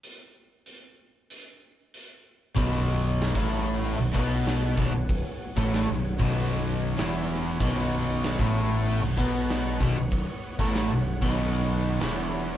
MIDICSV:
0, 0, Header, 1, 5, 480
1, 0, Start_track
1, 0, Tempo, 630252
1, 26, Time_signature, 4, 2, 24, 8
1, 9575, End_track
2, 0, Start_track
2, 0, Title_t, "Synth drone"
2, 0, Program_c, 0, 95
2, 1953, Note_on_c, 0, 73, 84
2, 1953, Note_on_c, 0, 78, 72
2, 1960, Note_on_c, 0, 59, 78
2, 9575, Note_off_c, 0, 59, 0
2, 9575, Note_off_c, 0, 73, 0
2, 9575, Note_off_c, 0, 78, 0
2, 9575, End_track
3, 0, Start_track
3, 0, Title_t, "Distorted electric guitar"
3, 0, Program_c, 1, 30
3, 1943, Note_on_c, 1, 35, 98
3, 1952, Note_on_c, 1, 47, 112
3, 2541, Note_off_c, 1, 35, 0
3, 2545, Note_off_c, 1, 47, 0
3, 2547, Note_on_c, 1, 45, 93
3, 2557, Note_on_c, 1, 57, 96
3, 3023, Note_off_c, 1, 45, 0
3, 3028, Note_off_c, 1, 57, 0
3, 3034, Note_on_c, 1, 35, 81
3, 3146, Note_on_c, 1, 47, 95
3, 3153, Note_on_c, 1, 59, 100
3, 3154, Note_off_c, 1, 35, 0
3, 3623, Note_off_c, 1, 47, 0
3, 3627, Note_off_c, 1, 59, 0
3, 3633, Note_on_c, 1, 35, 94
3, 3638, Note_on_c, 1, 47, 100
3, 3746, Note_off_c, 1, 35, 0
3, 3749, Note_off_c, 1, 47, 0
3, 3756, Note_on_c, 1, 35, 72
3, 3947, Note_off_c, 1, 35, 0
3, 4240, Note_on_c, 1, 45, 94
3, 4246, Note_on_c, 1, 57, 100
3, 4470, Note_off_c, 1, 45, 0
3, 4473, Note_off_c, 1, 57, 0
3, 4481, Note_on_c, 1, 35, 71
3, 4670, Note_off_c, 1, 35, 0
3, 4722, Note_on_c, 1, 35, 95
3, 4722, Note_on_c, 1, 47, 100
3, 5323, Note_off_c, 1, 35, 0
3, 5323, Note_on_c, 1, 40, 85
3, 5325, Note_off_c, 1, 47, 0
3, 5325, Note_on_c, 1, 52, 97
3, 5791, Note_off_c, 1, 40, 0
3, 5793, Note_off_c, 1, 52, 0
3, 5802, Note_on_c, 1, 35, 100
3, 5804, Note_on_c, 1, 47, 116
3, 6395, Note_off_c, 1, 35, 0
3, 6395, Note_on_c, 1, 45, 85
3, 6403, Note_off_c, 1, 47, 0
3, 6403, Note_on_c, 1, 57, 97
3, 6867, Note_off_c, 1, 45, 0
3, 6871, Note_off_c, 1, 57, 0
3, 6876, Note_on_c, 1, 35, 76
3, 6986, Note_on_c, 1, 47, 96
3, 6991, Note_on_c, 1, 59, 101
3, 6994, Note_off_c, 1, 35, 0
3, 7461, Note_off_c, 1, 47, 0
3, 7463, Note_off_c, 1, 59, 0
3, 7469, Note_on_c, 1, 35, 99
3, 7476, Note_on_c, 1, 47, 111
3, 7583, Note_off_c, 1, 35, 0
3, 7586, Note_off_c, 1, 47, 0
3, 7596, Note_on_c, 1, 35, 67
3, 7785, Note_off_c, 1, 35, 0
3, 8062, Note_on_c, 1, 45, 101
3, 8068, Note_on_c, 1, 57, 97
3, 8298, Note_off_c, 1, 45, 0
3, 8301, Note_off_c, 1, 57, 0
3, 8302, Note_on_c, 1, 35, 68
3, 8497, Note_off_c, 1, 35, 0
3, 8542, Note_on_c, 1, 35, 81
3, 8545, Note_on_c, 1, 47, 109
3, 9136, Note_off_c, 1, 35, 0
3, 9137, Note_off_c, 1, 47, 0
3, 9148, Note_on_c, 1, 40, 74
3, 9153, Note_on_c, 1, 52, 83
3, 9575, Note_off_c, 1, 40, 0
3, 9575, Note_off_c, 1, 52, 0
3, 9575, End_track
4, 0, Start_track
4, 0, Title_t, "Picked electric bass"
4, 0, Program_c, 2, 34
4, 1953, Note_on_c, 2, 23, 102
4, 2522, Note_off_c, 2, 23, 0
4, 2552, Note_on_c, 2, 33, 101
4, 3002, Note_off_c, 2, 33, 0
4, 3032, Note_on_c, 2, 23, 85
4, 3144, Note_off_c, 2, 23, 0
4, 3157, Note_on_c, 2, 35, 103
4, 3605, Note_off_c, 2, 35, 0
4, 3638, Note_on_c, 2, 23, 101
4, 3747, Note_off_c, 2, 23, 0
4, 3760, Note_on_c, 2, 23, 78
4, 3980, Note_off_c, 2, 23, 0
4, 4239, Note_on_c, 2, 33, 109
4, 4460, Note_off_c, 2, 33, 0
4, 4480, Note_on_c, 2, 23, 82
4, 4701, Note_off_c, 2, 23, 0
4, 4717, Note_on_c, 2, 23, 105
4, 5285, Note_off_c, 2, 23, 0
4, 5319, Note_on_c, 2, 28, 97
4, 5766, Note_off_c, 2, 28, 0
4, 5791, Note_on_c, 2, 23, 99
4, 6361, Note_off_c, 2, 23, 0
4, 6394, Note_on_c, 2, 33, 96
4, 6843, Note_off_c, 2, 33, 0
4, 6867, Note_on_c, 2, 23, 83
4, 6981, Note_off_c, 2, 23, 0
4, 6988, Note_on_c, 2, 35, 97
4, 7439, Note_off_c, 2, 35, 0
4, 7463, Note_on_c, 2, 23, 90
4, 7578, Note_off_c, 2, 23, 0
4, 7590, Note_on_c, 2, 23, 78
4, 7813, Note_off_c, 2, 23, 0
4, 8063, Note_on_c, 2, 33, 108
4, 8289, Note_off_c, 2, 33, 0
4, 8314, Note_on_c, 2, 23, 79
4, 8534, Note_off_c, 2, 23, 0
4, 8545, Note_on_c, 2, 23, 99
4, 9114, Note_off_c, 2, 23, 0
4, 9150, Note_on_c, 2, 28, 98
4, 9575, Note_off_c, 2, 28, 0
4, 9575, End_track
5, 0, Start_track
5, 0, Title_t, "Drums"
5, 26, Note_on_c, 9, 42, 56
5, 102, Note_off_c, 9, 42, 0
5, 503, Note_on_c, 9, 42, 54
5, 579, Note_off_c, 9, 42, 0
5, 992, Note_on_c, 9, 42, 61
5, 1068, Note_off_c, 9, 42, 0
5, 1478, Note_on_c, 9, 42, 58
5, 1554, Note_off_c, 9, 42, 0
5, 1954, Note_on_c, 9, 36, 105
5, 1957, Note_on_c, 9, 46, 57
5, 2030, Note_off_c, 9, 36, 0
5, 2033, Note_off_c, 9, 46, 0
5, 2439, Note_on_c, 9, 46, 60
5, 2452, Note_on_c, 9, 38, 102
5, 2515, Note_off_c, 9, 46, 0
5, 2528, Note_off_c, 9, 38, 0
5, 2554, Note_on_c, 9, 36, 104
5, 2630, Note_off_c, 9, 36, 0
5, 2914, Note_on_c, 9, 46, 65
5, 2991, Note_off_c, 9, 46, 0
5, 3157, Note_on_c, 9, 36, 102
5, 3233, Note_off_c, 9, 36, 0
5, 3394, Note_on_c, 9, 46, 61
5, 3406, Note_on_c, 9, 38, 115
5, 3470, Note_off_c, 9, 46, 0
5, 3483, Note_off_c, 9, 38, 0
5, 3637, Note_on_c, 9, 36, 101
5, 3713, Note_off_c, 9, 36, 0
5, 3878, Note_on_c, 9, 36, 105
5, 3881, Note_on_c, 9, 46, 59
5, 3954, Note_off_c, 9, 36, 0
5, 3957, Note_off_c, 9, 46, 0
5, 4240, Note_on_c, 9, 36, 104
5, 4316, Note_off_c, 9, 36, 0
5, 4361, Note_on_c, 9, 46, 55
5, 4373, Note_on_c, 9, 38, 98
5, 4437, Note_off_c, 9, 46, 0
5, 4450, Note_off_c, 9, 38, 0
5, 4718, Note_on_c, 9, 36, 109
5, 4794, Note_off_c, 9, 36, 0
5, 4834, Note_on_c, 9, 46, 60
5, 4910, Note_off_c, 9, 46, 0
5, 5311, Note_on_c, 9, 46, 59
5, 5324, Note_on_c, 9, 38, 115
5, 5387, Note_off_c, 9, 46, 0
5, 5400, Note_off_c, 9, 38, 0
5, 5789, Note_on_c, 9, 46, 58
5, 5792, Note_on_c, 9, 36, 110
5, 5865, Note_off_c, 9, 46, 0
5, 5868, Note_off_c, 9, 36, 0
5, 6266, Note_on_c, 9, 46, 56
5, 6279, Note_on_c, 9, 38, 103
5, 6343, Note_off_c, 9, 46, 0
5, 6355, Note_off_c, 9, 38, 0
5, 6391, Note_on_c, 9, 36, 101
5, 6468, Note_off_c, 9, 36, 0
5, 6744, Note_on_c, 9, 46, 62
5, 6820, Note_off_c, 9, 46, 0
5, 6883, Note_on_c, 9, 38, 34
5, 6959, Note_off_c, 9, 38, 0
5, 6989, Note_on_c, 9, 36, 101
5, 7065, Note_off_c, 9, 36, 0
5, 7225, Note_on_c, 9, 46, 60
5, 7238, Note_on_c, 9, 38, 103
5, 7302, Note_off_c, 9, 46, 0
5, 7315, Note_off_c, 9, 38, 0
5, 7468, Note_on_c, 9, 36, 108
5, 7544, Note_off_c, 9, 36, 0
5, 7698, Note_on_c, 9, 46, 62
5, 7707, Note_on_c, 9, 36, 102
5, 7774, Note_off_c, 9, 46, 0
5, 7783, Note_off_c, 9, 36, 0
5, 8066, Note_on_c, 9, 36, 111
5, 8142, Note_off_c, 9, 36, 0
5, 8178, Note_on_c, 9, 46, 54
5, 8191, Note_on_c, 9, 38, 103
5, 8254, Note_off_c, 9, 46, 0
5, 8267, Note_off_c, 9, 38, 0
5, 8546, Note_on_c, 9, 36, 104
5, 8622, Note_off_c, 9, 36, 0
5, 8656, Note_on_c, 9, 46, 62
5, 8732, Note_off_c, 9, 46, 0
5, 9138, Note_on_c, 9, 46, 53
5, 9151, Note_on_c, 9, 38, 107
5, 9214, Note_off_c, 9, 46, 0
5, 9227, Note_off_c, 9, 38, 0
5, 9575, End_track
0, 0, End_of_file